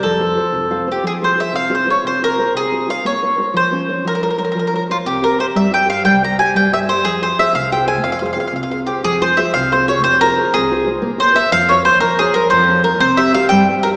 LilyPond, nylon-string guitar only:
\new Staff \with { instrumentName = "Nylon-string guitar" } { \time 6/8 \key f \major \tempo 4. = 121 f8 <f' a' c''>8 <f' a' c''>8 c8 <f' a' c'' f''>8 <f' a' c''>8 | \key f \minor f8 <f' aes' c''>8 <f' aes' c''>8 c8 <f' aes' c''>8 <f' aes' c''>8 | c8 <f' aes' c''>8 <f' aes' c''>8 c8 <f' aes' c''>8 <f' aes' c''>8 | bes8 <bes' des''>8 <bes' c'' des''>8 f8 <des' bes' c''>8 <bes' c'' des''>8 |
f8 <bes' c'' des''>8 <bes' c'' des''>8 f8 <bes' c'' des''>8 <bes' c'' des''>8 | c'8 <g' c'' e''>8 <g' c'' e''>8 g8 <g' c'' e''>8 <g' c'' e''>8 | g8 <g' c'' e''>8 <g' c'' e''>8 g8 <g' c'' e''>8 <g' c'' e''>8 | f8 <f' aes' c''>8 <f' aes' c''>8 c8 <f' aes' c''>8 <f' aes' c''>8 |
c8 <f' aes' c''>8 <f' aes' c''>8 c8 <f' aes' c''>8 <f' aes' c''>8 | f8 <f' aes' c''>8 <f' aes' c''>8 c8 <f' aes' c''>8 <f' aes' c''>8 | c8 <f' aes' c''>8 <f' aes' c''>8 c8 <f' aes' c''>8 <f' aes' c''>8 | bes8 <bes' c'' des''>8 <bes' c'' des''>8 f8 <bes' c'' des''>8 <bes' c'' des''>8 |
f8 <bes' c'' des''>8 <bes' c'' des''>8 f8 <bes' c'' des''>8 <bes' c'' des''>8 | c'8 <g' c'' e''>8 <g' c'' e''>8 g8 <g' c'' e''>8 <g' c'' e''>8 | }